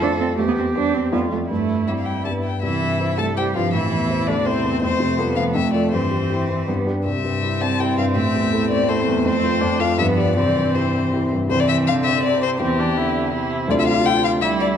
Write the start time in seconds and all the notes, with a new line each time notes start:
Already playing: F2 A3 F4 A4 C5
0.02 A3 D4 F4 C5
0.20 C4
0.38 E2 A3 G4
0.48 B3
0.58 C4
0.75 G3 D4 G4 C5
0.94 C4
1.12 F2 A3 B3 F4 D5
1.32 A3
1.50 G2 A3 E4
1.87 G3 C4 E4 E5
1.98 F5
2.05 G5
2.25 G2 B3 G4 D5 A5
2.44 G5
2.62 C2 E3 E4 E5
2.82 G2
3.00 E4 C5
3.18 G3 A3 A4 A5
3.37 G3 E4 G4 C5 G5
3.55 G2 F3 F4 F5
3.72 A1 E3 E4 E5
3.92 E2
4.10 E4 C5
4.27 D3 A3 D4 D5
4.46 C3 C4 E4 C5
4.64 E2
4.81 F2 A3 C4 C5
5.00 C3
5.18 G3 B3 F4 A4
5.36 F3 A3 F5
5.55 F2 A3 E5
5.74 F4 A4 D5
5.92 G2 E3 C4 C5
6.11 G3
6.30 E4 G4
6.49 C4
6.68 G2 G3 B3
6.87 D4 G4
7.06 C2 G3 C4 E5
7.25 G2
7.42 E4 G4
7.61 C4 A5
7.79 E4 G4 G5
7.97 G2 F5
8.16 A1 A3 E5
8.34 E2
8.52 E4 A4
8.70 C4 D5
8.88 E4 A4 C5
9.07 E2
9.25 F2 C4 C5
9.44 F4 A4
9.61 F2 D4
9.80 F4 A4 F5
9.98 G2 F3 B3 E5
10.17 F4 G4 D5
10.36 C2 E3 C4 D5
10.56 G2
10.75 E4 G4 C5
10.94 C4
11.13 E4 G4
11.33 G2
11.49 C2 E3 C4 E4 G4 C5
11.60 D5
11.69 E5
11.87 D3 F5
12.05 E5
12.24 C3 D5
12.43 C5
12.59 E2 E3 C4 E4 G4 C5
12.79 D4
12.96 D3 E4
13.33 C3 E4
13.68 D2 D4 F4 A4 D5
13.80 E5
13.88 F5
14.06 G5
14.24 F5
14.41 G3 E4 E5
14.60 D5